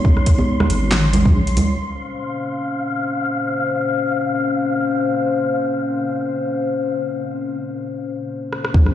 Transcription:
0, 0, Header, 1, 6, 480
1, 0, Start_track
1, 0, Key_signature, -5, "minor"
1, 0, Tempo, 500000
1, 8584, End_track
2, 0, Start_track
2, 0, Title_t, "Synth texture"
2, 0, Program_c, 0, 99
2, 0, Note_on_c, 0, 84, 85
2, 1716, Note_on_c, 0, 77, 78
2, 1724, Note_off_c, 0, 84, 0
2, 6724, Note_off_c, 0, 77, 0
2, 8391, Note_on_c, 0, 84, 88
2, 8584, Note_off_c, 0, 84, 0
2, 8584, End_track
3, 0, Start_track
3, 0, Title_t, "Analog synth pad"
3, 0, Program_c, 1, 89
3, 0, Note_on_c, 1, 56, 81
3, 0, Note_on_c, 1, 63, 74
3, 0, Note_on_c, 1, 73, 87
3, 1676, Note_off_c, 1, 73, 0
3, 1677, Note_off_c, 1, 56, 0
3, 1677, Note_off_c, 1, 63, 0
3, 1715, Note_on_c, 1, 72, 84
3, 1716, Note_on_c, 1, 58, 72
3, 1716, Note_on_c, 1, 61, 65
3, 8355, Note_off_c, 1, 58, 0
3, 8355, Note_off_c, 1, 61, 0
3, 8355, Note_off_c, 1, 72, 0
3, 8393, Note_on_c, 1, 58, 80
3, 8393, Note_on_c, 1, 61, 74
3, 8393, Note_on_c, 1, 72, 88
3, 8584, Note_off_c, 1, 58, 0
3, 8584, Note_off_c, 1, 61, 0
3, 8584, Note_off_c, 1, 72, 0
3, 8584, End_track
4, 0, Start_track
4, 0, Title_t, "Wobble bass"
4, 0, Program_c, 2, 39
4, 671, Note_on_c, 2, 32, 104
4, 1205, Note_on_c, 2, 34, 88
4, 1219, Note_off_c, 2, 32, 0
4, 1505, Note_on_c, 2, 37, 77
4, 1519, Note_off_c, 2, 34, 0
4, 1699, Note_off_c, 2, 37, 0
4, 8393, Note_on_c, 2, 34, 98
4, 8584, Note_off_c, 2, 34, 0
4, 8584, End_track
5, 0, Start_track
5, 0, Title_t, "Sub drop"
5, 0, Program_c, 3, 103
5, 8393, Note_on_c, 3, 60, 76
5, 8584, Note_off_c, 3, 60, 0
5, 8584, End_track
6, 0, Start_track
6, 0, Title_t, "Drums"
6, 46, Note_on_c, 9, 36, 116
6, 142, Note_off_c, 9, 36, 0
6, 161, Note_on_c, 9, 37, 49
6, 253, Note_on_c, 9, 42, 80
6, 254, Note_on_c, 9, 36, 99
6, 257, Note_off_c, 9, 37, 0
6, 349, Note_off_c, 9, 42, 0
6, 350, Note_off_c, 9, 36, 0
6, 370, Note_on_c, 9, 63, 85
6, 466, Note_off_c, 9, 63, 0
6, 578, Note_on_c, 9, 37, 78
6, 579, Note_on_c, 9, 64, 85
6, 581, Note_on_c, 9, 63, 77
6, 671, Note_on_c, 9, 42, 81
6, 674, Note_off_c, 9, 37, 0
6, 675, Note_off_c, 9, 64, 0
6, 677, Note_off_c, 9, 63, 0
6, 767, Note_off_c, 9, 42, 0
6, 879, Note_on_c, 9, 38, 110
6, 879, Note_on_c, 9, 39, 87
6, 975, Note_off_c, 9, 38, 0
6, 975, Note_off_c, 9, 39, 0
6, 1087, Note_on_c, 9, 64, 80
6, 1089, Note_on_c, 9, 42, 80
6, 1183, Note_off_c, 9, 64, 0
6, 1185, Note_off_c, 9, 42, 0
6, 1204, Note_on_c, 9, 36, 98
6, 1300, Note_off_c, 9, 36, 0
6, 1413, Note_on_c, 9, 42, 38
6, 1506, Note_on_c, 9, 46, 90
6, 1508, Note_on_c, 9, 64, 82
6, 1509, Note_off_c, 9, 42, 0
6, 1602, Note_off_c, 9, 46, 0
6, 1604, Note_off_c, 9, 64, 0
6, 8185, Note_on_c, 9, 37, 57
6, 8281, Note_off_c, 9, 37, 0
6, 8300, Note_on_c, 9, 37, 68
6, 8393, Note_on_c, 9, 36, 117
6, 8396, Note_off_c, 9, 37, 0
6, 8489, Note_off_c, 9, 36, 0
6, 8509, Note_on_c, 9, 37, 53
6, 8584, Note_off_c, 9, 37, 0
6, 8584, End_track
0, 0, End_of_file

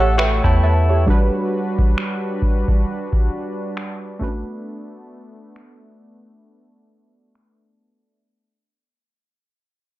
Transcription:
0, 0, Header, 1, 6, 480
1, 0, Start_track
1, 0, Tempo, 895522
1, 578, Time_signature, 4, 2, 24, 8
1, 5355, End_track
2, 0, Start_track
2, 0, Title_t, "Synth keys"
2, 0, Program_c, 0, 88
2, 0, Control_c, 0, 64, 127
2, 0, Note_on_c, 0, 73, 59
2, 0, Note_on_c, 0, 76, 69
2, 0, Note_on_c, 0, 78, 68
2, 0, Note_on_c, 0, 79, 70
2, 1, Note_on_c, 0, 67, 51
2, 91, Note_off_c, 0, 78, 0
2, 93, Note_off_c, 0, 73, 0
2, 95, Note_off_c, 0, 67, 0
2, 98, Note_off_c, 0, 76, 0
2, 98, Note_on_c, 0, 76, 65
2, 99, Note_off_c, 0, 79, 0
2, 99, Note_on_c, 0, 79, 68
2, 102, Note_on_c, 0, 71, 60
2, 228, Note_off_c, 0, 79, 0
2, 230, Note_off_c, 0, 76, 0
2, 232, Note_off_c, 0, 71, 0
2, 238, Note_on_c, 0, 79, 68
2, 238, Note_on_c, 0, 81, 68
2, 241, Note_on_c, 0, 73, 59
2, 331, Note_off_c, 0, 81, 0
2, 333, Note_off_c, 0, 79, 0
2, 335, Note_off_c, 0, 73, 0
2, 340, Note_on_c, 0, 76, 67
2, 340, Note_on_c, 0, 81, 67
2, 343, Note_on_c, 0, 71, 57
2, 471, Note_off_c, 0, 76, 0
2, 473, Note_off_c, 0, 71, 0
2, 479, Note_on_c, 0, 73, 60
2, 482, Note_on_c, 0, 67, 49
2, 562, Note_off_c, 0, 81, 0
2, 569, Note_on_c, 0, 55, 74
2, 576, Note_on_c, 0, 62, 69
2, 584, Note_on_c, 0, 66, 67
2, 586, Control_c, 0, 64, 0
2, 591, Note_on_c, 0, 71, 82
2, 672, Control_c, 0, 64, 127
2, 706, Note_off_c, 0, 73, 0
2, 708, Note_off_c, 0, 67, 0
2, 2232, Note_off_c, 0, 55, 0
2, 2235, Note_off_c, 0, 62, 0
2, 2239, Note_off_c, 0, 66, 0
2, 2243, Note_off_c, 0, 71, 0
2, 2247, Note_on_c, 0, 57, 76
2, 2255, Note_on_c, 0, 61, 55
2, 2262, Note_on_c, 0, 66, 68
2, 2265, Control_c, 0, 64, 0
2, 2269, Note_on_c, 0, 71, 81
2, 2290, Note_on_c, 0, 62, 66
2, 2297, Note_off_c, 0, 61, 0
2, 2361, Control_c, 0, 64, 127
2, 4151, Note_off_c, 0, 57, 0
2, 4158, Note_off_c, 0, 66, 0
2, 4162, Note_off_c, 0, 71, 0
2, 4172, Note_off_c, 0, 62, 0
2, 4425, Control_c, 0, 64, 0
2, 5355, End_track
3, 0, Start_track
3, 0, Title_t, "Clean electric guitar"
3, 0, Program_c, 1, 27
3, 0, Note_on_c, 1, 69, 78
3, 92, Note_off_c, 1, 69, 0
3, 97, Note_on_c, 1, 66, 76
3, 229, Note_off_c, 1, 66, 0
3, 236, Note_on_c, 1, 64, 66
3, 560, Note_off_c, 1, 64, 0
3, 5355, End_track
4, 0, Start_track
4, 0, Title_t, "Analog synth pad"
4, 0, Program_c, 2, 89
4, 0, Note_on_c, 2, 57, 73
4, 0, Note_on_c, 2, 69, 84
4, 0, Note_on_c, 2, 73, 75
4, 556, Note_off_c, 2, 57, 0
4, 556, Note_off_c, 2, 73, 0
4, 569, Note_off_c, 2, 69, 0
4, 578, Note_on_c, 2, 55, 76
4, 578, Note_on_c, 2, 62, 73
4, 578, Note_on_c, 2, 66, 74
4, 579, Note_on_c, 2, 71, 86
4, 2241, Note_off_c, 2, 55, 0
4, 2241, Note_off_c, 2, 66, 0
4, 2241, Note_off_c, 2, 71, 0
4, 2257, Note_on_c, 2, 57, 73
4, 2257, Note_on_c, 2, 59, 62
4, 4396, Note_off_c, 2, 57, 0
4, 4396, Note_off_c, 2, 59, 0
4, 4397, Note_off_c, 2, 62, 0
4, 5355, End_track
5, 0, Start_track
5, 0, Title_t, "808-style bass"
5, 0, Program_c, 3, 38
5, 0, Note_on_c, 3, 33, 98
5, 218, Note_off_c, 3, 33, 0
5, 238, Note_on_c, 3, 40, 96
5, 565, Note_off_c, 3, 40, 0
5, 5355, End_track
6, 0, Start_track
6, 0, Title_t, "Drums"
6, 102, Note_on_c, 9, 26, 111
6, 155, Note_off_c, 9, 26, 0
6, 237, Note_on_c, 9, 36, 84
6, 291, Note_off_c, 9, 36, 0
6, 578, Note_on_c, 9, 36, 103
6, 632, Note_off_c, 9, 36, 0
6, 958, Note_on_c, 9, 36, 89
6, 1011, Note_off_c, 9, 36, 0
6, 1060, Note_on_c, 9, 26, 101
6, 1114, Note_off_c, 9, 26, 0
6, 1298, Note_on_c, 9, 36, 81
6, 1352, Note_off_c, 9, 36, 0
6, 1438, Note_on_c, 9, 36, 94
6, 1491, Note_off_c, 9, 36, 0
6, 1677, Note_on_c, 9, 36, 91
6, 1730, Note_off_c, 9, 36, 0
6, 2021, Note_on_c, 9, 26, 114
6, 2075, Note_off_c, 9, 26, 0
6, 2257, Note_on_c, 9, 36, 80
6, 2311, Note_off_c, 9, 36, 0
6, 2981, Note_on_c, 9, 26, 100
6, 3034, Note_off_c, 9, 26, 0
6, 3942, Note_on_c, 9, 26, 108
6, 3995, Note_off_c, 9, 26, 0
6, 5355, End_track
0, 0, End_of_file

